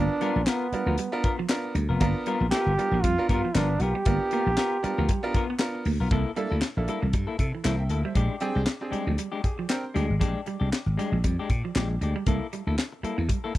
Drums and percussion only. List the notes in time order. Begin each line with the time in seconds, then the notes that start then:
0.21 closed hi-hat
0.47 snare, clap, closed hi-hat
0.73 closed hi-hat
0.98 closed hi-hat
1.24 kick, closed hi-hat
1.49 snare, clap, closed hi-hat
1.75 closed hi-hat
2.01 kick, closed hi-hat
2.26 closed hi-hat
2.52 snare, clap, closed hi-hat
2.79 closed hi-hat
3.04 kick, closed hi-hat
3.29 kick, closed hi-hat
3.55 snare, clap, closed hi-hat
3.80 closed hi-hat
4.05 kick, closed hi-hat
4.31 closed hi-hat
4.58 snare, clap, closed hi-hat
4.84 closed hi-hat
5.09 kick, closed hi-hat
5.34 kick, closed hi-hat
5.59 snare, clap, closed hi-hat
5.85 open hi-hat
6.11 kick, closed hi-hat
6.36 closed hi-hat
6.62 snare, clap, closed hi-hat
6.88 closed hi-hat
7.13 kick, closed hi-hat
7.39 kick, closed hi-hat
7.64 snare, clap, closed hi-hat
7.89 closed hi-hat
8.15 kick, closed hi-hat
8.40 closed hi-hat
8.67 snare, clap, closed hi-hat
8.93 closed hi-hat
9.18 closed hi-hat
9.44 kick, closed hi-hat
9.69 snare, clap, closed hi-hat
9.96 closed hi-hat
10.21 kick, closed hi-hat
10.46 closed hi-hat
10.73 snare, clap, closed hi-hat
10.99 closed hi-hat
11.24 kick, closed hi-hat
11.50 kick, closed hi-hat
11.75 snare, clap, closed hi-hat
12.02 closed hi-hat
12.26 kick, closed hi-hat
12.53 closed hi-hat
12.79 snare, clap, closed hi-hat
13.04 closed hi-hat
13.29 kick, closed hi-hat
13.55 kick